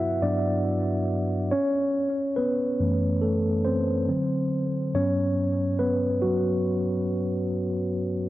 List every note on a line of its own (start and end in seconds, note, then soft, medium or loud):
0.00 0.22 G2 medium
0.00 0.23 F#3 medium
0.00 0.23 B3 medium
0.00 1.53 E4 medium
0.00 1.53 F#4 medium
0.00 1.53 B4 medium
0.00 1.52 E5 medium
0.00 1.53 F#5 loud
0.22 0.61 G2 soft
0.22 0.61 F#3 soft
0.22 0.62 B3 soft
0.22 1.05 D4 medium
0.22 1.04 D5 medium
1.51 2.33 C#4 medium
1.51 2.39 C#5 loud
2.36 3.19 B3 medium
2.36 3.25 B4 medium
2.80 4.04 F#2 medium
2.80 4.04 E3 soft
2.80 3.23 A3 medium
3.22 3.63 A3 medium
3.22 3.66 A4 medium
3.65 4.08 C4 medium
3.65 4.47 C5 medium
4.08 4.90 D3 medium
4.08 4.90 F#3 medium
4.08 4.90 C4 medium
4.94 8.29 G2 medium
4.94 6.22 F#3 soft
4.94 5.79 B3 medium
4.94 5.76 C#4 medium
4.94 5.83 C#5 loud
5.79 6.00 B3 medium
5.79 5.98 B4 medium
6.22 7.90 F#3 medium
6.22 7.90 F#4 medium